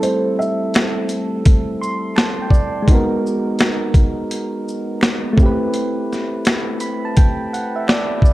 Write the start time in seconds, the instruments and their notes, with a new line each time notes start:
Already playing: synth keys G3 A3 C4 E4 A4
0.03 felt piano C5, closed hi-hat
0.39 felt piano E5, shaker
0.74 finger snap, snare, closed hi-hat
1.09 closed hi-hat, shaker
1.45 kick, closed hi-hat
1.81 synth keys C6, shaker
2.16 synth keys A5, finger snap, snare, closed hi-hat
2.42 synth keys G5
2.50 synth keys D5, kick, shaker
2.82 synth keys G#3 A#3
2.88 synth keys D#4 F#4, kick, closed hi-hat
2.92 synth keys B3 A#4
3.26 shaker
3.59 finger snap, snare, closed hi-hat
3.94 kick, closed hi-hat, shaker
4.31 closed hi-hat
4.68 shaker
5.01 finger snap, snare, closed hi-hat
5.33 synth keys A3 C4
5.38 synth keys E4, kick, shaker
5.42 synth keys G4 B4
5.74 closed hi-hat
6.13 snare, shaker
6.45 finger snap, snare, closed hi-hat
6.80 synth keys B5, closed hi-hat, shaker
7.05 synth keys A5
7.17 synth keys G5, kick, closed hi-hat
7.53 synth keys F#5, closed hi-hat, shaker
7.76 synth keys E5
7.88 synth keys D5, finger snap, snare, closed hi-hat
8.22 synth keys D5, kick, shaker